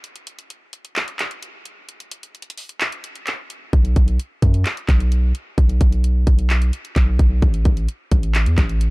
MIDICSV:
0, 0, Header, 1, 3, 480
1, 0, Start_track
1, 0, Tempo, 461538
1, 41, Time_signature, 4, 2, 24, 8
1, 9259, End_track
2, 0, Start_track
2, 0, Title_t, "808-style bass"
2, 0, Program_c, 0, 38
2, 3880, Note_on_c, 0, 35, 115
2, 4111, Note_off_c, 0, 35, 0
2, 4121, Note_on_c, 0, 35, 102
2, 4351, Note_off_c, 0, 35, 0
2, 4601, Note_on_c, 0, 42, 103
2, 4832, Note_off_c, 0, 42, 0
2, 5081, Note_on_c, 0, 35, 109
2, 5542, Note_off_c, 0, 35, 0
2, 5801, Note_on_c, 0, 35, 115
2, 6032, Note_off_c, 0, 35, 0
2, 6040, Note_on_c, 0, 35, 106
2, 6502, Note_off_c, 0, 35, 0
2, 6520, Note_on_c, 0, 35, 101
2, 6981, Note_off_c, 0, 35, 0
2, 7240, Note_on_c, 0, 35, 113
2, 7471, Note_off_c, 0, 35, 0
2, 7480, Note_on_c, 0, 35, 106
2, 7711, Note_off_c, 0, 35, 0
2, 7720, Note_on_c, 0, 33, 115
2, 7951, Note_off_c, 0, 33, 0
2, 7959, Note_on_c, 0, 33, 99
2, 8191, Note_off_c, 0, 33, 0
2, 8441, Note_on_c, 0, 33, 105
2, 8801, Note_on_c, 0, 40, 102
2, 8816, Note_off_c, 0, 33, 0
2, 8915, Note_off_c, 0, 40, 0
2, 8921, Note_on_c, 0, 33, 109
2, 9259, Note_off_c, 0, 33, 0
2, 9259, End_track
3, 0, Start_track
3, 0, Title_t, "Drums"
3, 41, Note_on_c, 9, 42, 63
3, 145, Note_off_c, 9, 42, 0
3, 162, Note_on_c, 9, 42, 58
3, 266, Note_off_c, 9, 42, 0
3, 280, Note_on_c, 9, 42, 98
3, 384, Note_off_c, 9, 42, 0
3, 401, Note_on_c, 9, 42, 57
3, 505, Note_off_c, 9, 42, 0
3, 522, Note_on_c, 9, 42, 76
3, 626, Note_off_c, 9, 42, 0
3, 759, Note_on_c, 9, 42, 85
3, 863, Note_off_c, 9, 42, 0
3, 881, Note_on_c, 9, 42, 59
3, 985, Note_off_c, 9, 42, 0
3, 1001, Note_on_c, 9, 39, 110
3, 1003, Note_on_c, 9, 42, 77
3, 1105, Note_off_c, 9, 39, 0
3, 1107, Note_off_c, 9, 42, 0
3, 1121, Note_on_c, 9, 42, 61
3, 1225, Note_off_c, 9, 42, 0
3, 1241, Note_on_c, 9, 39, 101
3, 1241, Note_on_c, 9, 42, 77
3, 1345, Note_off_c, 9, 39, 0
3, 1345, Note_off_c, 9, 42, 0
3, 1363, Note_on_c, 9, 42, 56
3, 1467, Note_off_c, 9, 42, 0
3, 1482, Note_on_c, 9, 42, 75
3, 1586, Note_off_c, 9, 42, 0
3, 1721, Note_on_c, 9, 42, 73
3, 1825, Note_off_c, 9, 42, 0
3, 1962, Note_on_c, 9, 42, 63
3, 2066, Note_off_c, 9, 42, 0
3, 2082, Note_on_c, 9, 42, 59
3, 2186, Note_off_c, 9, 42, 0
3, 2199, Note_on_c, 9, 42, 101
3, 2303, Note_off_c, 9, 42, 0
3, 2321, Note_on_c, 9, 42, 56
3, 2425, Note_off_c, 9, 42, 0
3, 2441, Note_on_c, 9, 42, 45
3, 2520, Note_off_c, 9, 42, 0
3, 2520, Note_on_c, 9, 42, 62
3, 2600, Note_off_c, 9, 42, 0
3, 2600, Note_on_c, 9, 42, 79
3, 2678, Note_on_c, 9, 46, 85
3, 2704, Note_off_c, 9, 42, 0
3, 2782, Note_off_c, 9, 46, 0
3, 2800, Note_on_c, 9, 42, 58
3, 2904, Note_off_c, 9, 42, 0
3, 2920, Note_on_c, 9, 39, 113
3, 2921, Note_on_c, 9, 42, 80
3, 3024, Note_off_c, 9, 39, 0
3, 3025, Note_off_c, 9, 42, 0
3, 3040, Note_on_c, 9, 42, 64
3, 3144, Note_off_c, 9, 42, 0
3, 3160, Note_on_c, 9, 42, 78
3, 3264, Note_off_c, 9, 42, 0
3, 3281, Note_on_c, 9, 42, 55
3, 3385, Note_off_c, 9, 42, 0
3, 3399, Note_on_c, 9, 39, 89
3, 3400, Note_on_c, 9, 42, 74
3, 3503, Note_off_c, 9, 39, 0
3, 3504, Note_off_c, 9, 42, 0
3, 3641, Note_on_c, 9, 42, 72
3, 3745, Note_off_c, 9, 42, 0
3, 3880, Note_on_c, 9, 42, 63
3, 3881, Note_on_c, 9, 36, 115
3, 3984, Note_off_c, 9, 42, 0
3, 3985, Note_off_c, 9, 36, 0
3, 4001, Note_on_c, 9, 42, 61
3, 4105, Note_off_c, 9, 42, 0
3, 4120, Note_on_c, 9, 42, 100
3, 4121, Note_on_c, 9, 36, 100
3, 4224, Note_off_c, 9, 42, 0
3, 4225, Note_off_c, 9, 36, 0
3, 4242, Note_on_c, 9, 42, 57
3, 4346, Note_off_c, 9, 42, 0
3, 4363, Note_on_c, 9, 42, 77
3, 4467, Note_off_c, 9, 42, 0
3, 4601, Note_on_c, 9, 36, 95
3, 4601, Note_on_c, 9, 42, 85
3, 4705, Note_off_c, 9, 36, 0
3, 4705, Note_off_c, 9, 42, 0
3, 4722, Note_on_c, 9, 42, 60
3, 4826, Note_off_c, 9, 42, 0
3, 4841, Note_on_c, 9, 39, 116
3, 4843, Note_on_c, 9, 42, 77
3, 4945, Note_off_c, 9, 39, 0
3, 4947, Note_off_c, 9, 42, 0
3, 4962, Note_on_c, 9, 42, 63
3, 5066, Note_off_c, 9, 42, 0
3, 5081, Note_on_c, 9, 36, 100
3, 5082, Note_on_c, 9, 39, 98
3, 5082, Note_on_c, 9, 42, 80
3, 5185, Note_off_c, 9, 36, 0
3, 5186, Note_off_c, 9, 39, 0
3, 5186, Note_off_c, 9, 42, 0
3, 5204, Note_on_c, 9, 42, 57
3, 5308, Note_off_c, 9, 42, 0
3, 5322, Note_on_c, 9, 42, 76
3, 5426, Note_off_c, 9, 42, 0
3, 5562, Note_on_c, 9, 42, 73
3, 5666, Note_off_c, 9, 42, 0
3, 5801, Note_on_c, 9, 36, 111
3, 5802, Note_on_c, 9, 42, 66
3, 5905, Note_off_c, 9, 36, 0
3, 5906, Note_off_c, 9, 42, 0
3, 5922, Note_on_c, 9, 42, 61
3, 6026, Note_off_c, 9, 42, 0
3, 6040, Note_on_c, 9, 36, 105
3, 6040, Note_on_c, 9, 42, 101
3, 6144, Note_off_c, 9, 36, 0
3, 6144, Note_off_c, 9, 42, 0
3, 6161, Note_on_c, 9, 42, 57
3, 6265, Note_off_c, 9, 42, 0
3, 6282, Note_on_c, 9, 42, 76
3, 6386, Note_off_c, 9, 42, 0
3, 6520, Note_on_c, 9, 36, 97
3, 6520, Note_on_c, 9, 42, 86
3, 6624, Note_off_c, 9, 36, 0
3, 6624, Note_off_c, 9, 42, 0
3, 6642, Note_on_c, 9, 42, 59
3, 6746, Note_off_c, 9, 42, 0
3, 6761, Note_on_c, 9, 39, 112
3, 6763, Note_on_c, 9, 42, 78
3, 6865, Note_off_c, 9, 39, 0
3, 6867, Note_off_c, 9, 42, 0
3, 6882, Note_on_c, 9, 42, 61
3, 6986, Note_off_c, 9, 42, 0
3, 7001, Note_on_c, 9, 42, 81
3, 7105, Note_off_c, 9, 42, 0
3, 7122, Note_on_c, 9, 42, 58
3, 7226, Note_off_c, 9, 42, 0
3, 7240, Note_on_c, 9, 36, 97
3, 7241, Note_on_c, 9, 39, 89
3, 7241, Note_on_c, 9, 42, 77
3, 7344, Note_off_c, 9, 36, 0
3, 7345, Note_off_c, 9, 39, 0
3, 7345, Note_off_c, 9, 42, 0
3, 7481, Note_on_c, 9, 36, 96
3, 7481, Note_on_c, 9, 42, 75
3, 7585, Note_off_c, 9, 36, 0
3, 7585, Note_off_c, 9, 42, 0
3, 7720, Note_on_c, 9, 36, 118
3, 7721, Note_on_c, 9, 42, 65
3, 7824, Note_off_c, 9, 36, 0
3, 7825, Note_off_c, 9, 42, 0
3, 7840, Note_on_c, 9, 42, 62
3, 7944, Note_off_c, 9, 42, 0
3, 7959, Note_on_c, 9, 42, 100
3, 7960, Note_on_c, 9, 36, 103
3, 8063, Note_off_c, 9, 42, 0
3, 8064, Note_off_c, 9, 36, 0
3, 8080, Note_on_c, 9, 42, 55
3, 8184, Note_off_c, 9, 42, 0
3, 8201, Note_on_c, 9, 42, 75
3, 8305, Note_off_c, 9, 42, 0
3, 8440, Note_on_c, 9, 36, 99
3, 8440, Note_on_c, 9, 42, 86
3, 8544, Note_off_c, 9, 36, 0
3, 8544, Note_off_c, 9, 42, 0
3, 8561, Note_on_c, 9, 42, 59
3, 8665, Note_off_c, 9, 42, 0
3, 8681, Note_on_c, 9, 39, 114
3, 8683, Note_on_c, 9, 42, 76
3, 8785, Note_off_c, 9, 39, 0
3, 8787, Note_off_c, 9, 42, 0
3, 8802, Note_on_c, 9, 42, 63
3, 8906, Note_off_c, 9, 42, 0
3, 8921, Note_on_c, 9, 36, 101
3, 8921, Note_on_c, 9, 39, 99
3, 8921, Note_on_c, 9, 42, 78
3, 9025, Note_off_c, 9, 36, 0
3, 9025, Note_off_c, 9, 39, 0
3, 9025, Note_off_c, 9, 42, 0
3, 9042, Note_on_c, 9, 42, 57
3, 9146, Note_off_c, 9, 42, 0
3, 9162, Note_on_c, 9, 42, 75
3, 9259, Note_off_c, 9, 42, 0
3, 9259, End_track
0, 0, End_of_file